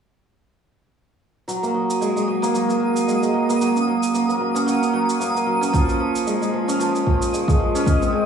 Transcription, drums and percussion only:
1.49 shaker
1.64 shaker
1.90 shaker
2.02 shaker
2.17 shaker
2.43 shaker
2.55 shaker
2.70 shaker
2.96 shaker
3.08 shaker
3.23 shaker
3.50 shaker
3.61 shaker
3.76 shaker
4.03 shaker
4.15 shaker
4.30 shaker
4.56 shaker
4.68 shaker
4.83 shaker
5.09 shaker
5.21 shaker
5.36 shaker
5.63 shaker
5.74 kick, shaker
5.89 shaker
6.16 shaker
6.27 shaker
6.42 shaker
6.69 shaker
6.81 shaker
6.95 shaker
7.07 kick
7.22 shaker
7.34 shaker
7.48 kick, shaker
7.75 shaker
7.86 kick, shaker
8.02 shaker

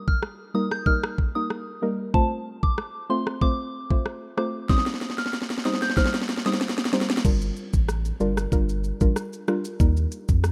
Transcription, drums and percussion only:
0.08 kick
0.23 cross-stick
0.71 cross-stick
0.86 kick
1.03 cross-stick
1.18 kick
1.50 cross-stick
2.14 kick
2.63 kick
2.78 cross-stick
3.27 cross-stick
3.41 kick
3.90 kick
4.06 cross-stick
4.38 cross-stick
4.69 kick, snare
4.78 snare
4.86 snare
4.94 snare
5.01 snare
5.10 snare
5.18 snare
5.26 snare
5.33 snare
5.42 snare
5.50 snare
5.58 snare
5.65 snare
5.74 snare
5.82 snare
5.90 snare
5.97 kick, snare
6.06 snare
6.14 snare
6.21 snare
6.29 snare
6.37 snare
6.46 snare
6.53 snare
6.61 snare
6.69 snare
6.78 snare
6.85 snare
6.93 snare
7.01 snare
7.10 snare
7.17 snare
7.25 kick, crash, shaker, maracas
7.41 maracas, shaker
7.56 maracas, shaker
7.73 kick, shaker, maracas
7.88 cross-stick, shaker, maracas
8.05 maracas, shaker
8.20 shaker, maracas
8.37 cross-stick, shaker, maracas
8.52 kick, maracas, shaker
8.69 shaker, maracas
8.84 maracas, shaker
9.01 kick, maracas, shaker
9.16 cross-stick, shaker, maracas
9.33 shaker, maracas
9.48 cross-stick, shaker
9.65 maracas, shaker
9.80 kick, shaker, maracas
9.97 maracas, shaker
10.12 closed hi-hat, maracas, shaker
10.28 kick, shaker, maracas
10.44 cross-stick, shaker, maracas

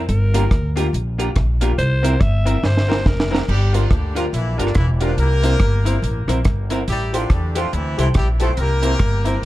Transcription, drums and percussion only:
0.09 closed hi-hat
0.34 closed hi-hat
0.51 kick, cross-stick, closed hi-hat
0.77 closed hi-hat
0.94 closed hi-hat
1.20 closed hi-hat
1.36 kick, cross-stick, closed hi-hat
1.61 closed hi-hat
1.79 closed hi-hat
2.04 closed hi-hat
2.21 kick, cross-stick, closed hi-hat
2.47 closed hi-hat
2.64 snare
2.77 snare
2.92 snare
3.06 kick, snare
3.20 snare
3.35 snare
3.49 crash
3.74 closed hi-hat
3.91 kick, cross-stick, closed hi-hat
4.16 closed hi-hat
4.34 closed hi-hat
4.59 closed hi-hat
4.67 cross-stick
4.75 kick, cross-stick, closed hi-hat
5.01 closed hi-hat
5.18 closed hi-hat
5.44 closed hi-hat
5.60 kick, cross-stick, closed hi-hat
5.86 closed hi-hat
6.04 closed hi-hat
6.28 cross-stick, closed hi-hat
6.45 kick, cross-stick, closed hi-hat
6.70 closed hi-hat
6.88 closed hi-hat
7.14 closed hi-hat
7.30 kick, cross-stick, closed hi-hat
7.55 closed hi-hat
7.73 closed hi-hat
7.99 closed hi-hat
8.14 kick, cross-stick, closed hi-hat
8.40 closed hi-hat
8.57 closed hi-hat
8.83 closed hi-hat
8.99 kick, cross-stick, closed hi-hat
9.26 closed hi-hat

